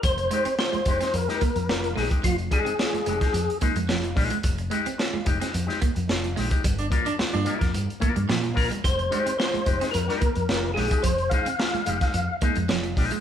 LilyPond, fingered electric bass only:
\new Staff \with { instrumentName = "Fingered electric bass" } { \clef bass \time 4/4 \key f \dorian \tempo 4 = 109 f,,8 r4 f,,16 r16 f,16 r8 f,16 f,,8 bes,,16 r16 | f,,8 r4 f,,16 r16 f,16 r8 f,16 f,,8 bes,,16 r16 | f,,8 r4 f,,16 r16 f,16 r8 f,16 f,,8 bes,,16 r16 | g,,8 r8. g,16 r16 f,16 g,16 r8 g,16 bes,8 bes,,16 r16 |
f,,8 r4 f,,16 r16 f,16 r8 f,16 f,,8 bes,,16 r16 | f,,8 r4 f,,16 r16 f,16 r8 f,16 f,,8 bes,,16 r16 | }